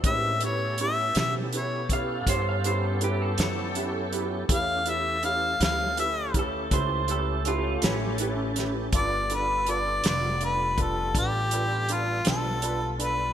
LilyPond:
<<
  \new Staff \with { instrumentName = "Harmonica" } { \time 12/8 \key a \dorian \tempo 4. = 54 e''8 cis''8 e''8 e''8 cis''8 r2. r8 | f''8 e''8 f''8 f''8 e''8 r2. r8 | d''8 b'8 d''8 d''8 b'8 a'8 g'4 f'8 a'4 b'8 | }
  \new Staff \with { instrumentName = "Clean electric guitar" } { \time 12/8 \key a \dorian r2 r8 f''8 c''16 f''16 c''16 a'16 g'16 a'16 a'4~ a'16 r16 | r2 r8 a'8 c''8 a'8 f'8 cis'4~ cis'16 r16 | r1. | }
  \new Staff \with { instrumentName = "Grand piano" } { \time 12/8 \key a \dorian <cis' e' g' b'>8 <cis' e' g' b'>8 <cis' e' g' b'>8 <cis' e' g' cis''>8 <cis' e' g' b'>8 <cis' e' g' b'>8 <cis' e' g' cis''>8 <cis' e' g' b'>8 <cis' e' g' b'>8 <cis' e' g' b'>8 <cis' e' g' b'>8 <cis' e' g' b'>8 | <cis' e' g' b'>8 <cis' e' g' b'>8 <cis' e' g' b'>8 <cis' e' g' b'>8 <cis' e' g' b'>8 <cis' e' g' b'>8 <cis' e' g' b'>8 <cis' e' g' b'>8 <cis' e' g' b'>8 <cis' e' g' b'>8 <cis' e' g' b'>8 <cis' e' g' b'>8 | <d' f' a' b'>8 <d' f' a' b'>8 <d' f' a' b'>8 <d' f' a' b'>8 <d' f' a' b'>8 <d' f' a' b'>8 <d' f' a' b'>8 <d' f' a' b'>8 <d' f' a' b'>8 <d' f' a' b'>8 <d' f' a' b'>8 <d' f' a' b'>8 | }
  \new Staff \with { instrumentName = "Tonewheel organ" } { \time 12/8 \key a \dorian <gis c' d' bes'>8 <b cis' g' a'>1~ <b cis' g' a'>4. | <a cis' g' a'>1. | <g b f' a'>1. | }
  \new Staff \with { instrumentName = "Upright bass" } { \clef bass \time 12/8 \key a \dorian a,4. b,4. g,4. fis,4. | e,4. d,4. cis,4. a,,4. | g,,4. f,,4. a,,4. b,,4. | }
  \new DrumStaff \with { instrumentName = "Drums" } \drummode { \time 12/8 <hh bd>8 hh8 hh8 <hh sn>8 hh8 <hh bd>8 <hh bd>8 hh8 hh8 <hh sn>8 hh8 hh8 | <hh bd>8 hh8 hh8 <hh sn>8 hh8 <hh bd>8 <hh bd>8 hh8 hh8 <hh sn>8 hh8 <hh sn>8 | <hh bd>8 hh8 hh8 <hh sn>8 hh8 <hh bd>8 <hh bd>8 hh8 hh8 <hh sn>8 hh8 hh8 | }
>>